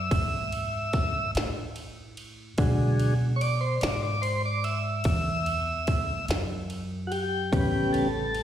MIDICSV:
0, 0, Header, 1, 4, 480
1, 0, Start_track
1, 0, Tempo, 824176
1, 1513, Time_signature, 12, 3, 24, 8
1, 4910, End_track
2, 0, Start_track
2, 0, Title_t, "Tonewheel organ"
2, 0, Program_c, 0, 16
2, 0, Note_on_c, 0, 76, 97
2, 764, Note_off_c, 0, 76, 0
2, 1501, Note_on_c, 0, 54, 45
2, 1505, Note_on_c, 0, 50, 59
2, 1512, Note_on_c, 0, 56, 63
2, 1826, Note_off_c, 0, 54, 0
2, 1828, Note_off_c, 0, 50, 0
2, 1832, Note_off_c, 0, 56, 0
2, 1958, Note_on_c, 0, 73, 74
2, 1988, Note_off_c, 0, 73, 0
2, 1988, Note_on_c, 0, 74, 112
2, 2102, Note_off_c, 0, 74, 0
2, 2102, Note_on_c, 0, 72, 76
2, 2219, Note_off_c, 0, 72, 0
2, 2219, Note_on_c, 0, 74, 84
2, 2337, Note_off_c, 0, 74, 0
2, 2347, Note_on_c, 0, 74, 70
2, 2457, Note_on_c, 0, 72, 95
2, 2461, Note_off_c, 0, 74, 0
2, 2576, Note_off_c, 0, 72, 0
2, 2594, Note_on_c, 0, 74, 90
2, 2703, Note_on_c, 0, 76, 101
2, 2705, Note_off_c, 0, 74, 0
2, 3644, Note_off_c, 0, 76, 0
2, 4118, Note_on_c, 0, 66, 66
2, 4143, Note_on_c, 0, 67, 99
2, 4148, Note_off_c, 0, 66, 0
2, 4378, Note_on_c, 0, 49, 58
2, 4381, Note_on_c, 0, 59, 58
2, 4384, Note_on_c, 0, 55, 50
2, 4612, Note_off_c, 0, 67, 0
2, 4617, Note_on_c, 0, 69, 99
2, 4703, Note_off_c, 0, 49, 0
2, 4704, Note_off_c, 0, 59, 0
2, 4706, Note_off_c, 0, 55, 0
2, 4910, Note_off_c, 0, 69, 0
2, 4910, End_track
3, 0, Start_track
3, 0, Title_t, "Upright bass"
3, 0, Program_c, 1, 32
3, 69, Note_on_c, 1, 44, 79
3, 769, Note_off_c, 1, 44, 0
3, 788, Note_on_c, 1, 45, 80
3, 1489, Note_off_c, 1, 45, 0
3, 1506, Note_on_c, 1, 47, 78
3, 2208, Note_off_c, 1, 47, 0
3, 2228, Note_on_c, 1, 44, 88
3, 2929, Note_off_c, 1, 44, 0
3, 2942, Note_on_c, 1, 40, 90
3, 3645, Note_off_c, 1, 40, 0
3, 3662, Note_on_c, 1, 42, 88
3, 4364, Note_off_c, 1, 42, 0
3, 4384, Note_on_c, 1, 33, 89
3, 4910, Note_off_c, 1, 33, 0
3, 4910, End_track
4, 0, Start_track
4, 0, Title_t, "Drums"
4, 66, Note_on_c, 9, 36, 94
4, 66, Note_on_c, 9, 51, 91
4, 124, Note_off_c, 9, 36, 0
4, 124, Note_off_c, 9, 51, 0
4, 305, Note_on_c, 9, 51, 67
4, 364, Note_off_c, 9, 51, 0
4, 543, Note_on_c, 9, 51, 61
4, 545, Note_on_c, 9, 36, 81
4, 555, Note_on_c, 9, 38, 31
4, 601, Note_off_c, 9, 51, 0
4, 603, Note_off_c, 9, 36, 0
4, 613, Note_off_c, 9, 38, 0
4, 786, Note_on_c, 9, 51, 70
4, 798, Note_on_c, 9, 38, 107
4, 844, Note_off_c, 9, 51, 0
4, 856, Note_off_c, 9, 38, 0
4, 1023, Note_on_c, 9, 51, 60
4, 1082, Note_off_c, 9, 51, 0
4, 1265, Note_on_c, 9, 51, 51
4, 1323, Note_off_c, 9, 51, 0
4, 1501, Note_on_c, 9, 51, 79
4, 1504, Note_on_c, 9, 36, 102
4, 1559, Note_off_c, 9, 51, 0
4, 1562, Note_off_c, 9, 36, 0
4, 1744, Note_on_c, 9, 51, 66
4, 1803, Note_off_c, 9, 51, 0
4, 1987, Note_on_c, 9, 51, 70
4, 2045, Note_off_c, 9, 51, 0
4, 2220, Note_on_c, 9, 51, 88
4, 2232, Note_on_c, 9, 38, 108
4, 2278, Note_off_c, 9, 51, 0
4, 2291, Note_off_c, 9, 38, 0
4, 2463, Note_on_c, 9, 51, 66
4, 2521, Note_off_c, 9, 51, 0
4, 2703, Note_on_c, 9, 51, 55
4, 2761, Note_off_c, 9, 51, 0
4, 2935, Note_on_c, 9, 51, 92
4, 2942, Note_on_c, 9, 36, 89
4, 2994, Note_off_c, 9, 51, 0
4, 3000, Note_off_c, 9, 36, 0
4, 3181, Note_on_c, 9, 51, 66
4, 3240, Note_off_c, 9, 51, 0
4, 3420, Note_on_c, 9, 51, 71
4, 3423, Note_on_c, 9, 36, 77
4, 3478, Note_off_c, 9, 51, 0
4, 3481, Note_off_c, 9, 36, 0
4, 3660, Note_on_c, 9, 51, 78
4, 3672, Note_on_c, 9, 38, 109
4, 3718, Note_off_c, 9, 51, 0
4, 3730, Note_off_c, 9, 38, 0
4, 3901, Note_on_c, 9, 51, 58
4, 3960, Note_off_c, 9, 51, 0
4, 4145, Note_on_c, 9, 51, 55
4, 4203, Note_off_c, 9, 51, 0
4, 4383, Note_on_c, 9, 36, 103
4, 4387, Note_on_c, 9, 51, 75
4, 4441, Note_off_c, 9, 36, 0
4, 4445, Note_off_c, 9, 51, 0
4, 4624, Note_on_c, 9, 51, 58
4, 4682, Note_off_c, 9, 51, 0
4, 4860, Note_on_c, 9, 51, 61
4, 4910, Note_off_c, 9, 51, 0
4, 4910, End_track
0, 0, End_of_file